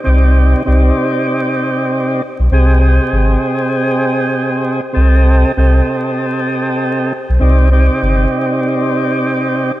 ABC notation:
X:1
M:4/4
L:1/16
Q:"Swing 16ths" 1/4=98
K:Cm
V:1 name="Tonewheel organ"
[C,CEGd]4 [C,CEGd]8- [C,CEGd]2 z2 | [C,CGAe]2 [C,CGAe]12 z2 | [C,CG=A^d]4 [C,CGAd]8- [C,CGAd]2 z2 | [C,CEGd]2 [C,CEGd]12 z2 |]
V:2 name="Sub bass" clef=bass
C,,4 C,,2 z8 z =B,,, | C,,4 A,,,2 z8 z2 | C,,4 C,,2 z8 z =B,,, | C,,4 G,,,2 z8 z2 |]